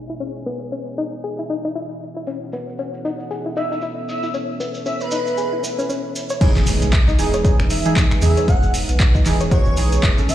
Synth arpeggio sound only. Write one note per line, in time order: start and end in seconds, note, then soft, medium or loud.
0.10 0.17 E4 medium
0.20 0.27 C#4 medium
0.46 0.57 B3 loud
0.72 0.79 C#4 medium
0.98 1.08 D#4 medium
1.24 1.31 G#4 medium
1.39 1.44 E4 medium
1.50 1.57 D#4 medium
1.65 1.70 D#4 loud
1.76 1.82 E4 medium
2.17 2.24 E4 medium
2.27 2.34 C#4 medium
2.53 2.63 B3 medium
2.79 2.86 C#4 medium
3.05 3.15 D#4 medium
3.31 3.38 G#4 medium
3.46 3.51 E4 medium
3.57 3.63 D#4 loud
3.72 3.77 D#4 loud
3.82 3.89 E4 medium
4.23 4.31 E4 medium
4.34 4.41 C#4 medium
4.60 4.70 B3 medium
4.86 4.93 C#4 medium
5.12 5.22 D#4 medium
5.38 5.45 G#4 medium
5.53 5.58 E4 medium
5.63 5.74 B3 medium
5.79 5.86 C#4 loud
5.89 5.96 C#4 medium
6.30 6.38 C#5 medium
6.41 6.48 C#4 loud
6.93 6.97 E4 medium
7.08 7.15 D#4 loud
7.34 7.39 C#5 medium
7.45 7.51 C#4 loud
7.60 7.65 C#4 medium
7.96 8.00 E4 medium
8.22 8.32 C#3 loud
8.37 8.42 C#5 medium
8.48 8.55 C#4 loud
9.00 9.04 E4 medium
9.15 9.22 D#4 loud
9.41 9.46 C#5 medium
9.51 9.58 C#4 loud
9.67 9.71 C#4 loud
10.03 10.07 E4 medium
10.29 10.35 C#3 loud